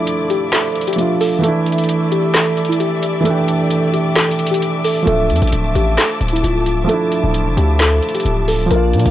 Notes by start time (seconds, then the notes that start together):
Already playing: F3 A3 D4 E4 A4 D5 E5 D6
0.07 closed hi-hat
0.30 G4, closed hi-hat
0.53 A4, snare, clap, closed hi-hat
0.75 closed hi-hat
0.81 closed hi-hat
0.87 G4, closed hi-hat
0.93 F3, closed hi-hat
0.97 A3 D4 F4, closed hi-hat
1.21 A4, open hi-hat
1.39 E3 A3
1.43 D4 A4 D5 D6, closed hi-hat
1.48 E4
1.66 closed hi-hat
1.72 closed hi-hat
1.78 closed hi-hat
1.84 closed hi-hat
1.89 closed hi-hat
2.12 G4, closed hi-hat
2.34 A4, snare, clap, closed hi-hat
2.57 closed hi-hat
2.65 closed hi-hat
2.69 E4, closed hi-hat
2.80 G4, closed hi-hat
3.03 closed hi-hat
3.21 E3 A3
3.25 D4 A4, closed hi-hat
3.30 G4
3.48 closed hi-hat
3.71 closed hi-hat
3.93 G4, closed hi-hat
4.16 A4, snare, clap, closed hi-hat
4.24 closed hi-hat
4.31 closed hi-hat
4.39 closed hi-hat
4.47 closed hi-hat
4.51 G4, closed hi-hat
4.62 closed hi-hat
4.84 A4, open hi-hat
5.02 F3 A3
5.07 D1 D4 A4 A5, closed hi-hat
5.12 E5
5.30 F2, closed hi-hat
5.36 closed hi-hat
5.42 A1, closed hi-hat
5.47 closed hi-hat
5.52 D1, closed hi-hat
5.75 A1 G4, closed hi-hat
5.98 A4, snare, clap, closed hi-hat
6.21 D1, closed hi-hat
6.28 closed hi-hat
6.33 E4, closed hi-hat
6.43 D1 F4, closed hi-hat
6.66 closed hi-hat
6.84 F3 A3
6.89 D4 A4, closed hi-hat
6.94 E4
7.12 closed hi-hat
7.24 D1
7.34 closed hi-hat
7.46 F1
7.57 D2 G4, closed hi-hat
7.80 A4, snare, clap, closed hi-hat
8.03 closed hi-hat
8.09 closed hi-hat
8.15 G4, closed hi-hat
8.20 closed hi-hat
8.25 D1, closed hi-hat
8.48 A4, open hi-hat
8.66 F3 A#3
8.71 A#1 A#3 D4 A#4 D5, closed hi-hat
8.76 F4
8.93 A#2, closed hi-hat
8.99 closed hi-hat
9.05 A#1, closed hi-hat